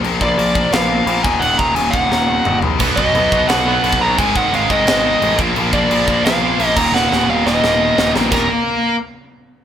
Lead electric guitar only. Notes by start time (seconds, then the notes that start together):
0.22 D5
0.73 F5
1.24 G#5
1.40 F#5
1.58 A#5
1.75 G#5
1.91 F#5
2.96 D#5
3.48 F#5
4.02 A#5
4.18 G#5
4.36 F#5
4.55 F5
4.71 D#5
5.74 D5
6.25 F5
6.67 D#5
6.76 A#5
6.94 F#5
7.30 F5
7.47 D#5
8.32 A#4